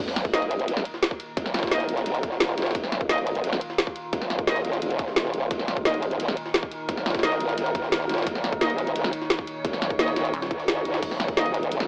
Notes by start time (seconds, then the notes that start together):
0.00 D#1 A#2 D#3 D#4 A#4, sub drop
0.08 snare
0.16 snare, closed hi-hat, ride
0.25 kick, closed hi-hat
0.34 D#1 A#3 D#4 D#5, snare, closed hi-hat, ride
0.42 closed hi-hat
0.51 closed hi-hat, ride
0.59 closed hi-hat
0.68 closed hi-hat, ride
0.77 snare, closed hi-hat
0.85 closed hi-hat, ride
0.94 snare
1.03 snare, closed hi-hat, ride
1.11 kick
1.20 closed hi-hat, ride
1.37 D#1, kick, closed hi-hat, ride
1.46 snare, ride
1.54 snare, closed hi-hat, ride
1.59 snare, ride
1.63 kick, snare, closed hi-hat, ride
1.67 snare, ride
1.71 D#1 A#3 D#4 D#5, snare, closed hi-hat, ride
1.80 snare, closed hi-hat
1.89 closed hi-hat, ride
1.97 snare, closed hi-hat
2.06 F1, closed hi-hat, ride
2.15 closed hi-hat, ride
2.23 kick, closed hi-hat, ride
2.32 snare
2.40 snare, closed hi-hat, ride
2.49 snare
2.58 D#1, snare, closed hi-hat, ride
2.62 snare, ride
2.66 snare, ride
2.71 snare, ride
2.75 D#1 F4, kick, closed hi-hat, ride
2.84 snare
2.92 snare, closed hi-hat, ride
3.01 kick, closed hi-hat
3.09 D#1 A#3 D#4 D#5, snare, closed hi-hat, ride
3.18 closed hi-hat
3.27 closed hi-hat, ride
3.35 closed hi-hat
3.44 closed hi-hat, ride
3.53 snare, closed hi-hat
3.61 closed hi-hat, ride
3.70 snare
3.78 snare, closed hi-hat, ride
3.87 kick
3.96 closed hi-hat, ride
4.13 D#1, kick, closed hi-hat, ride
4.22 snare, ride
4.30 snare, closed hi-hat, ride
4.39 kick, closed hi-hat
4.47 D#1 A#3 D#4 D#5, snare, closed hi-hat, ride
4.56 snare, closed hi-hat
4.65 closed hi-hat, ride
4.73 snare, closed hi-hat
4.82 D#1, closed hi-hat, ride
4.91 closed hi-hat, ride
4.99 kick, closed hi-hat, ride
5.08 snare
5.16 snare, closed hi-hat, ride
5.25 snare
5.34 D#1, closed hi-hat, ride
5.51 D#1 A#4, kick, closed hi-hat, ride
5.59 snare
5.68 snare, closed hi-hat, ride
5.77 kick, closed hi-hat
5.85 D#1 A#3 D#4 D#5, snare, closed hi-hat, ride
5.94 closed hi-hat
6.03 closed hi-hat, ride
6.11 closed hi-hat
6.20 closed hi-hat, ride
6.28 snare, closed hi-hat
6.37 closed hi-hat, ride
6.46 snare
6.54 snare, closed hi-hat, ride
6.63 kick
6.71 closed hi-hat, ride
6.89 D#1, kick, closed hi-hat, ride
6.97 snare, ride
7.06 snare, closed hi-hat, ride
7.10 snare, ride
7.15 kick, snare, closed hi-hat, ride
7.19 snare, ride
7.23 D#1 A#3 D#4 D#5, snare, closed hi-hat, ride
7.32 snare, closed hi-hat
7.40 closed hi-hat, ride
7.49 snare, closed hi-hat
7.58 F1, closed hi-hat, ride
7.66 closed hi-hat, ride
7.75 kick, closed hi-hat, ride
7.84 snare
7.92 snare, closed hi-hat, ride
8.01 snare
8.09 D#1, snare, closed hi-hat, ride
8.14 snare, ride
8.18 snare, ride
8.22 snare, ride
8.27 D#1 C#5, kick, closed hi-hat, ride
8.35 snare
8.44 snare, closed hi-hat, ride
8.53 kick, closed hi-hat
8.61 D#1 A#3 D#4 D#5, snare, closed hi-hat, ride
8.70 closed hi-hat
8.78 closed hi-hat, ride
8.87 closed hi-hat
8.96 closed hi-hat, ride
9.04 snare, closed hi-hat
9.13 closed hi-hat, ride
9.21 snare
9.30 snare, closed hi-hat, ride
9.39 kick
9.47 closed hi-hat, ride
9.65 D#1, kick, closed hi-hat, ride
9.73 snare, ride
9.82 snare, closed hi-hat, ride
9.90 kick, closed hi-hat
9.99 D#1 A#3 D#4 D#5, snare, closed hi-hat, ride
10.08 snare, closed hi-hat
10.16 snare, closed hi-hat, ride
10.25 closed hi-hat
10.34 D#1, closed hi-hat, ride
10.42 snare, closed hi-hat, ride
10.51 D#2, kick, closed hi-hat
10.59 ride
10.68 snare, closed hi-hat, ride
10.77 snare
10.85 closed hi-hat, ride
10.94 snare, ride
11.03 D#1 G#4, kick, closed hi-hat, ride, crash, shaker
11.11 snare
11.20 snare, closed hi-hat, ride
11.28 kick, closed hi-hat
11.37 D#1 A#3 D#4 D#5, snare, closed hi-hat, ride, shaker
11.46 closed hi-hat
11.54 closed hi-hat, ride
11.63 closed hi-hat
11.72 closed hi-hat, ride, shaker
11.80 snare, closed hi-hat